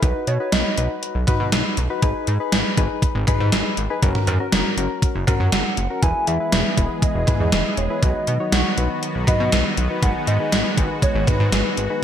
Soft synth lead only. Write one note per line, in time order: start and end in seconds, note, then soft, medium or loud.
0.02 0.29 B4 loud
0.28 0.54 C#5 loud
0.52 1.02 D#5 loud
5.27 6.04 F#5 loud
6.03 6.29 G#5 loud
6.28 6.78 E5 loud
7.03 7.38 D#5 medium
7.40 7.79 D#5 loud
7.78 8.04 C#5 medium
8.02 8.54 D#5 loud
8.52 9.03 F#5 loud
9.28 9.74 D#5 loud
10.03 10.29 F#5 loud
10.28 10.78 D#5 loud
11.02 11.29 C#5 loud
11.28 11.77 B4 loud
11.78 12.04 B4 loud